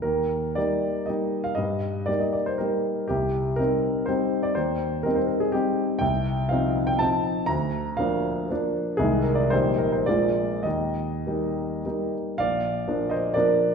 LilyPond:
<<
  \new Staff \with { instrumentName = "Grand piano" } { \time 3/4 \key ees \major \tempo 4 = 120 bes'4 d''4 ees''8. f''16 | ees''4 d''16 ees''16 d''16 c''16 bes'4 | g'4 bes'4 c''8. d''16 | c''4 bes'16 c''16 bes'16 aes'16 g'4 |
g''4 f''8. g''16 a''4 | bes''4 f''4. r8 | aes'8 bes'16 d''16 c''8 bes'16 c''16 d''4 | ees''2~ ees''8 r8 |
\key bes \major <d'' f''>4. <c'' ees''>8 <bes' d''>4 | }
  \new Staff \with { instrumentName = "Grand piano" } { \time 3/4 \key ees \major ees,4 <g bes ees'>4 <g bes ees'>4 | g,4 <g bes ees'>4 <g bes ees'>4 | c,4 <g c' ees'>4 <g c' ees'>4 | ees,4 <g c' ees'>4 <g c' ees'>4 |
c,4 <f c' ees'>4 <f c' ees'>4 | d,4 <f bes d'>4 <f bes d'>4 | <c, ees aes ees'>4 <bes,, ees g ees'>4 <bes,, aes bes f'>4 | ees,4 <g bes ees'>4 <g bes ees'>4 |
\key bes \major bes,,4 <f bes d'>4 <f bes d'>4 | }
>>